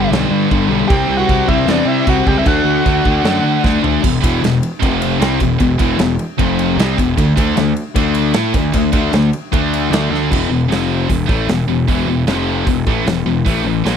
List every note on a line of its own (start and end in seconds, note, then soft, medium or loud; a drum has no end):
0.00 0.10 G2 medium
0.00 0.11 D3 medium
0.00 0.12 G3 loud
0.11 0.25 B1 loud
0.11 0.50 G2 loud
0.11 0.50 D3 loud
0.11 0.52 G3 loud
0.11 snare loud
0.11 china medium
0.31 0.44 G2 loud
0.51 0.65 G1 medium
0.51 0.69 G2 medium
0.51 0.69 D3 medium
0.51 0.69 G3 loud
0.51 kick medium
0.51 china medium
0.68 0.82 B1 medium
0.68 0.88 G2 loud
0.68 0.87 D3 medium
0.68 0.87 G3 loud
0.88 1.04 C2 loud
0.88 1.26 C3 medium
0.88 1.27 G3 loud
0.88 1.28 C4 loud
0.88 1.16 G4 loud
0.88 1.17 G5 loud
0.88 kick loud
0.88 china medium
1.08 1.22 C2 medium
1.18 1.46 F#4 loud
1.18 1.49 F#5 loud
1.28 1.43 C2 medium
1.28 1.47 C3 loud
1.28 1.48 G3 medium
1.28 1.48 C4 loud
1.28 kick medium
1.28 china medium
1.48 1.62 C2 medium
1.48 1.66 C3 medium
1.48 1.67 G3 medium
1.48 1.67 C4 medium
1.48 1.67 E4 medium
1.48 1.68 E5 loud
1.48 kick medium
1.66 1.80 E2 medium
1.66 2.06 C3 loud
1.66 2.06 G3 loud
1.66 2.07 C4 loud
1.66 1.87 D4 medium
1.66 snare loud
1.66 china medium
1.70 1.88 D5 medium
1.85 2.00 C3 loud
1.85 2.06 E4 medium
1.85 2.07 E5 loud
2.07 2.21 C2 medium
2.07 2.25 C3 medium
2.07 2.25 G3 medium
2.07 2.26 C4 medium
2.07 2.28 F#4 medium
2.07 2.28 F#5 loud
2.07 kick medium
2.07 china medium
2.26 2.40 C#2 medium
2.26 2.44 C3 medium
2.26 2.45 G3 loud
2.26 2.45 C4 medium
2.26 2.39 G4 medium
2.26 2.38 G5 loud
2.26 kick loud
2.39 2.49 E4 medium
2.39 2.47 E5 medium
2.45 2.60 D2 loud
2.45 2.83 D3 loud
2.45 2.85 A3 loud
2.45 2.85 D4 loud
2.45 3.64 F#4 medium
2.45 3.64 F#5 loud
2.45 kick loud
2.45 china medium
2.64 2.79 D2 medium
2.84 3.00 D2 medium
2.84 3.03 D3 medium
2.84 3.04 A3 medium
2.84 3.04 D4 medium
2.84 kick medium
2.84 china medium
3.04 3.19 D2 medium
3.04 3.23 D3 medium
3.04 3.24 A3 medium
3.04 3.25 D4 loud
3.04 kick medium
3.24 3.38 F#2 medium
3.24 3.63 D3 loud
3.24 3.63 A3 loud
3.24 3.64 D4 loud
3.24 snare loud
3.24 china medium
3.43 3.57 D3 loud
3.64 3.78 D2 medium
3.64 3.81 D3 medium
3.64 3.82 A3 medium
3.64 3.82 D4 medium
3.64 kick loud
3.64 snare medium
3.82 3.98 D2 medium
3.82 4.01 D3 medium
3.82 4.01 A3 medium
3.82 4.02 D4 loud
3.82 floor tom medium
4.02 4.21 E1 medium
4.02 4.18 E2 medium
4.02 4.19 B2 medium
4.02 kick loud
4.02 crash loud
4.23 4.41 E1 medium
4.23 4.41 E2 medium
4.23 4.42 B2 medium
4.23 4.42 E3 loud
4.23 kick loud
4.23 ride medium
4.42 4.61 E1 medium
4.42 4.58 E2 medium
4.42 4.58 B2 medium
4.42 snare loud
4.42 ride loud
4.63 ride medium
4.82 5.18 F1 loud
4.82 5.20 F2 loud
4.82 5.19 C3 loud
4.82 5.20 F3 loud
4.82 kick loud
4.82 ride loud
5.02 ride medium
5.20 5.38 C2 loud
5.20 5.39 C3 loud
5.20 5.40 G3 medium
5.20 5.40 C4 loud
5.20 snare loud
5.20 ride loud
5.40 5.59 E1 medium
5.40 5.56 E2 medium
5.40 5.56 B2 medium
5.40 kick medium
5.40 ride medium
5.60 5.78 E1 medium
5.60 5.76 E2 medium
5.60 5.76 B2 medium
5.60 kick loud
5.60 ride loud
5.79 5.98 E1 medium
5.79 5.99 E2 medium
5.79 5.99 B2 loud
5.79 6.00 E3 loud
5.79 kick loud
5.79 ride medium
5.98 6.17 E1 medium
5.98 6.15 E2 medium
5.98 6.15 B2 medium
5.98 snare loud
5.98 ride loud
6.19 ride medium
6.38 6.75 F1 medium
6.38 6.77 F2 loud
6.38 6.77 C3 loud
6.38 6.78 F3 loud
6.38 kick loud
6.38 ride loud
6.59 ride medium
6.76 6.95 C2 medium
6.76 6.97 C3 medium
6.76 6.97 G3 loud
6.76 6.97 C4 medium
6.76 ride loud
6.80 snare loud
6.97 7.16 E1 medium
6.97 7.13 E2 medium
6.97 7.13 B2 medium
6.97 kick loud
6.97 ride medium
7.17 7.35 D2 medium
7.17 7.33 D3 medium
7.17 7.33 A3 medium
7.17 kick medium
7.17 ride loud
7.37 7.55 D2 medium
7.37 7.55 D3 medium
7.37 7.56 A3 loud
7.37 7.56 D4 loud
7.37 kick loud
7.37 ride medium
7.56 7.74 D2 medium
7.56 7.72 D3 medium
7.56 7.72 A3 medium
7.56 snare loud
7.56 ride loud
7.76 ride medium
7.95 8.32 D2 loud
7.95 8.33 D3 loud
7.95 8.34 A3 loud
7.95 8.34 D4 loud
7.95 kick loud
7.95 ride loud
8.14 ride medium
8.34 8.52 A2 medium
8.34 8.54 A3 medium
8.34 8.54 E4 medium
8.34 8.54 A4 loud
8.34 snare loud
8.34 ride loud
8.54 8.72 D2 medium
8.54 8.70 D3 medium
8.54 8.70 A3 medium
8.54 kick loud
8.54 ride medium
8.73 8.92 D2 medium
8.73 8.90 D3 medium
8.73 8.90 A3 medium
8.73 kick medium
8.73 ride loud
8.93 9.11 D2 medium
8.93 9.12 D3 medium
8.93 9.12 A3 medium
8.93 9.13 D4 medium
8.93 kick loud
8.93 ride medium
9.13 9.31 D2 medium
9.13 9.29 D3 medium
9.13 9.29 A3 medium
9.13 snare loud
9.13 ride loud
9.33 ride medium
9.52 9.89 D2 loud
9.52 9.90 D3 medium
9.52 9.91 A3 loud
9.52 9.91 D4 loud
9.52 kick loud
9.52 ride loud
9.73 ride medium
9.90 10.09 D2 medium
9.90 10.09 D3 medium
9.90 10.10 A3 medium
9.90 10.10 D4 medium
9.90 snare loud
9.90 ride loud
10.10 10.29 D2 medium
10.10 10.30 D3 medium
10.10 10.30 A3 loud
10.10 10.30 D4 loud
10.14 snare medium
10.30 10.49 E1 medium
10.30 10.49 E2 medium
10.30 10.50 B2 loud
10.30 10.50 E3 loud
10.30 kick medium
10.30 crash loud
10.49 10.68 E1 medium
10.49 10.66 E2 medium
10.49 10.66 B2 medium
10.69 11.06 F1 medium
10.69 11.08 F2 loud
10.69 11.09 C3 medium
10.69 11.09 F3 medium
10.69 snare loud
10.69 open hi-hat medium
11.09 11.28 E1 medium
11.09 11.25 E2 medium
11.09 11.25 B2 medium
11.09 kick medium
11.09 open hi-hat medium
11.28 11.46 A1 loud
11.28 11.48 A2 loud
11.28 11.48 E3 medium
11.28 11.48 A3 medium
11.28 kick loud
11.47 11.66 E1 medium
11.47 11.65 E2 medium
11.47 11.64 B2 medium
11.47 snare loud
11.47 open hi-hat medium
11.67 11.86 E1 medium
11.67 11.84 E2 medium
11.67 11.84 B2 medium
11.88 12.06 E1 loud
11.88 12.07 E2 loud
11.88 12.07 B2 loud
11.88 12.08 E3 loud
11.88 kick loud
11.88 open hi-hat medium
12.06 12.25 E1 medium
12.06 12.24 E2 medium
12.06 12.24 B2 medium
12.27 12.64 F1 medium
12.27 12.67 F2 medium
12.27 12.67 C3 loud
12.27 12.67 F3 loud
12.27 snare loud
12.27 open hi-hat medium
12.66 12.85 E1 medium
12.66 12.83 E2 medium
12.66 12.83 B2 medium
12.66 kick loud
12.66 open hi-hat medium
12.86 13.05 A1 loud
12.86 13.06 A2 medium
12.86 13.06 E3 medium
12.86 13.06 A3 medium
12.86 kick loud
13.06 13.24 E1 medium
13.06 13.23 E2 medium
13.06 13.23 B2 medium
13.06 snare loud
13.06 open hi-hat medium
13.26 13.44 E1 medium
13.26 13.42 E2 medium
13.26 13.42 B2 medium
13.46 13.63 A1 medium
13.46 13.65 A2 medium
13.46 13.65 E3 loud
13.46 13.65 A3 loud
13.46 kick loud
13.46 open hi-hat medium
13.64 13.83 A1 medium
13.64 13.82 A2 medium
13.64 13.82 E3 medium
13.85 13.97 A#1 medium
13.85 13.97 A#2 medium
13.85 13.97 F3 loud
13.85 13.97 A#3 loud
13.85 snare loud
13.85 open hi-hat medium